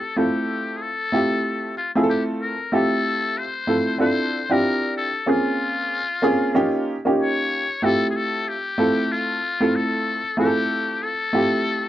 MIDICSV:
0, 0, Header, 1, 3, 480
1, 0, Start_track
1, 0, Key_signature, -1, "major"
1, 0, Tempo, 638298
1, 126, Time_signature, 4, 2, 24, 8
1, 8938, End_track
2, 0, Start_track
2, 0, Title_t, "Muted trumpet"
2, 0, Program_c, 0, 59
2, 0, Note_on_c, 0, 69, 84
2, 131, Note_on_c, 0, 67, 89
2, 143, Note_off_c, 0, 69, 0
2, 573, Note_on_c, 0, 68, 57
2, 585, Note_off_c, 0, 67, 0
2, 616, Note_on_c, 0, 69, 93
2, 627, Note_off_c, 0, 68, 0
2, 1328, Note_off_c, 0, 69, 0
2, 1332, Note_on_c, 0, 65, 72
2, 1439, Note_off_c, 0, 65, 0
2, 1576, Note_on_c, 0, 67, 77
2, 1682, Note_off_c, 0, 67, 0
2, 1816, Note_on_c, 0, 70, 78
2, 2059, Note_on_c, 0, 69, 96
2, 2070, Note_off_c, 0, 70, 0
2, 2540, Note_on_c, 0, 72, 100
2, 2551, Note_off_c, 0, 69, 0
2, 3009, Note_off_c, 0, 72, 0
2, 3014, Note_on_c, 0, 72, 103
2, 3400, Note_on_c, 0, 70, 91
2, 3411, Note_off_c, 0, 72, 0
2, 3732, Note_off_c, 0, 70, 0
2, 3736, Note_on_c, 0, 69, 93
2, 3979, Note_on_c, 0, 65, 98
2, 3990, Note_off_c, 0, 69, 0
2, 5216, Note_off_c, 0, 65, 0
2, 5418, Note_on_c, 0, 73, 106
2, 5895, Note_on_c, 0, 69, 103
2, 5907, Note_off_c, 0, 73, 0
2, 6087, Note_off_c, 0, 69, 0
2, 6092, Note_on_c, 0, 68, 65
2, 6134, Note_on_c, 0, 69, 95
2, 6145, Note_off_c, 0, 68, 0
2, 6379, Note_on_c, 0, 67, 102
2, 6391, Note_off_c, 0, 69, 0
2, 6856, Note_on_c, 0, 65, 94
2, 6868, Note_off_c, 0, 67, 0
2, 7337, Note_on_c, 0, 69, 90
2, 7349, Note_off_c, 0, 65, 0
2, 7812, Note_off_c, 0, 69, 0
2, 7816, Note_on_c, 0, 67, 99
2, 8297, Note_on_c, 0, 69, 98
2, 8308, Note_off_c, 0, 67, 0
2, 8938, Note_off_c, 0, 69, 0
2, 8938, End_track
3, 0, Start_track
3, 0, Title_t, "Upright piano"
3, 0, Program_c, 1, 0
3, 124, Note_on_c, 1, 57, 71
3, 127, Note_on_c, 1, 60, 67
3, 131, Note_on_c, 1, 64, 64
3, 133, Note_on_c, 1, 65, 62
3, 136, Note_on_c, 1, 69, 72
3, 660, Note_off_c, 1, 57, 0
3, 661, Note_off_c, 1, 60, 0
3, 663, Note_off_c, 1, 64, 0
3, 664, Note_off_c, 1, 65, 0
3, 666, Note_off_c, 1, 69, 0
3, 844, Note_on_c, 1, 57, 64
3, 845, Note_on_c, 1, 60, 60
3, 850, Note_on_c, 1, 64, 59
3, 855, Note_on_c, 1, 65, 63
3, 856, Note_on_c, 1, 67, 74
3, 1291, Note_off_c, 1, 57, 0
3, 1292, Note_off_c, 1, 60, 0
3, 1294, Note_off_c, 1, 64, 0
3, 1297, Note_off_c, 1, 65, 0
3, 1297, Note_off_c, 1, 67, 0
3, 1469, Note_on_c, 1, 57, 82
3, 1473, Note_on_c, 1, 60, 76
3, 1474, Note_on_c, 1, 64, 77
3, 1477, Note_on_c, 1, 65, 81
3, 1480, Note_on_c, 1, 68, 72
3, 1514, Note_off_c, 1, 68, 0
3, 1529, Note_on_c, 1, 69, 88
3, 1900, Note_off_c, 1, 57, 0
3, 1901, Note_off_c, 1, 60, 0
3, 1902, Note_off_c, 1, 64, 0
3, 1904, Note_off_c, 1, 65, 0
3, 1930, Note_off_c, 1, 69, 0
3, 2046, Note_on_c, 1, 57, 69
3, 2050, Note_on_c, 1, 60, 68
3, 2052, Note_on_c, 1, 64, 67
3, 2054, Note_on_c, 1, 65, 66
3, 2057, Note_on_c, 1, 67, 81
3, 2581, Note_off_c, 1, 57, 0
3, 2583, Note_off_c, 1, 60, 0
3, 2584, Note_off_c, 1, 64, 0
3, 2585, Note_off_c, 1, 65, 0
3, 2586, Note_off_c, 1, 67, 0
3, 2761, Note_on_c, 1, 57, 62
3, 2762, Note_on_c, 1, 60, 57
3, 2767, Note_on_c, 1, 64, 58
3, 2770, Note_on_c, 1, 65, 61
3, 2775, Note_on_c, 1, 69, 72
3, 2985, Note_off_c, 1, 60, 0
3, 2992, Note_off_c, 1, 64, 0
3, 2996, Note_off_c, 1, 65, 0
3, 2996, Note_on_c, 1, 60, 73
3, 3000, Note_off_c, 1, 69, 0
3, 3000, Note_on_c, 1, 62, 64
3, 3003, Note_on_c, 1, 64, 64
3, 3004, Note_off_c, 1, 57, 0
3, 3008, Note_on_c, 1, 65, 66
3, 3011, Note_on_c, 1, 69, 80
3, 3298, Note_off_c, 1, 60, 0
3, 3300, Note_off_c, 1, 62, 0
3, 3301, Note_off_c, 1, 64, 0
3, 3303, Note_off_c, 1, 65, 0
3, 3305, Note_off_c, 1, 69, 0
3, 3381, Note_on_c, 1, 60, 76
3, 3385, Note_on_c, 1, 62, 69
3, 3388, Note_on_c, 1, 64, 62
3, 3390, Note_on_c, 1, 65, 71
3, 3395, Note_on_c, 1, 67, 78
3, 3815, Note_off_c, 1, 60, 0
3, 3818, Note_off_c, 1, 62, 0
3, 3819, Note_off_c, 1, 64, 0
3, 3820, Note_off_c, 1, 65, 0
3, 3823, Note_off_c, 1, 67, 0
3, 3958, Note_on_c, 1, 58, 69
3, 3961, Note_on_c, 1, 60, 63
3, 3962, Note_on_c, 1, 61, 66
3, 3967, Note_on_c, 1, 65, 66
3, 3971, Note_on_c, 1, 68, 81
3, 4497, Note_off_c, 1, 58, 0
3, 4498, Note_off_c, 1, 60, 0
3, 4499, Note_off_c, 1, 61, 0
3, 4501, Note_off_c, 1, 65, 0
3, 4503, Note_off_c, 1, 68, 0
3, 4678, Note_on_c, 1, 58, 86
3, 4682, Note_on_c, 1, 60, 77
3, 4684, Note_on_c, 1, 61, 74
3, 4687, Note_on_c, 1, 65, 69
3, 4690, Note_on_c, 1, 68, 93
3, 4910, Note_off_c, 1, 58, 0
3, 4914, Note_off_c, 1, 61, 0
3, 4918, Note_off_c, 1, 65, 0
3, 4921, Note_on_c, 1, 58, 82
3, 4924, Note_off_c, 1, 60, 0
3, 4925, Note_on_c, 1, 61, 83
3, 4928, Note_off_c, 1, 68, 0
3, 4929, Note_on_c, 1, 63, 75
3, 4929, Note_on_c, 1, 65, 79
3, 4934, Note_on_c, 1, 67, 101
3, 5220, Note_off_c, 1, 58, 0
3, 5222, Note_off_c, 1, 61, 0
3, 5224, Note_off_c, 1, 63, 0
3, 5224, Note_off_c, 1, 65, 0
3, 5227, Note_off_c, 1, 67, 0
3, 5302, Note_on_c, 1, 58, 68
3, 5305, Note_on_c, 1, 61, 69
3, 5310, Note_on_c, 1, 63, 67
3, 5313, Note_on_c, 1, 65, 68
3, 5315, Note_on_c, 1, 67, 82
3, 5736, Note_off_c, 1, 58, 0
3, 5738, Note_off_c, 1, 61, 0
3, 5740, Note_off_c, 1, 63, 0
3, 5741, Note_off_c, 1, 65, 0
3, 5743, Note_off_c, 1, 67, 0
3, 5882, Note_on_c, 1, 57, 72
3, 5884, Note_on_c, 1, 60, 67
3, 5888, Note_on_c, 1, 64, 66
3, 5890, Note_on_c, 1, 65, 65
3, 5896, Note_on_c, 1, 67, 77
3, 6419, Note_off_c, 1, 57, 0
3, 6420, Note_off_c, 1, 60, 0
3, 6422, Note_off_c, 1, 64, 0
3, 6423, Note_off_c, 1, 65, 0
3, 6426, Note_off_c, 1, 67, 0
3, 6601, Note_on_c, 1, 57, 73
3, 6602, Note_on_c, 1, 60, 68
3, 6607, Note_on_c, 1, 64, 63
3, 6611, Note_on_c, 1, 65, 65
3, 6613, Note_on_c, 1, 69, 75
3, 7050, Note_off_c, 1, 57, 0
3, 7050, Note_off_c, 1, 60, 0
3, 7052, Note_off_c, 1, 64, 0
3, 7054, Note_off_c, 1, 65, 0
3, 7056, Note_off_c, 1, 69, 0
3, 7222, Note_on_c, 1, 57, 76
3, 7226, Note_on_c, 1, 60, 68
3, 7227, Note_on_c, 1, 64, 64
3, 7233, Note_on_c, 1, 65, 67
3, 7234, Note_on_c, 1, 69, 83
3, 7656, Note_off_c, 1, 57, 0
3, 7658, Note_off_c, 1, 60, 0
3, 7659, Note_off_c, 1, 64, 0
3, 7661, Note_off_c, 1, 65, 0
3, 7662, Note_off_c, 1, 69, 0
3, 7798, Note_on_c, 1, 57, 73
3, 7803, Note_on_c, 1, 60, 67
3, 7806, Note_on_c, 1, 64, 69
3, 7808, Note_on_c, 1, 65, 65
3, 7813, Note_on_c, 1, 68, 64
3, 7861, Note_on_c, 1, 69, 86
3, 7867, Note_off_c, 1, 68, 0
3, 8337, Note_off_c, 1, 57, 0
3, 8339, Note_off_c, 1, 60, 0
3, 8341, Note_off_c, 1, 64, 0
3, 8342, Note_off_c, 1, 65, 0
3, 8368, Note_off_c, 1, 69, 0
3, 8519, Note_on_c, 1, 57, 71
3, 8523, Note_on_c, 1, 60, 62
3, 8525, Note_on_c, 1, 64, 59
3, 8530, Note_on_c, 1, 65, 65
3, 8532, Note_on_c, 1, 67, 80
3, 8938, Note_off_c, 1, 57, 0
3, 8938, Note_off_c, 1, 60, 0
3, 8938, Note_off_c, 1, 64, 0
3, 8938, Note_off_c, 1, 65, 0
3, 8938, Note_off_c, 1, 67, 0
3, 8938, End_track
0, 0, End_of_file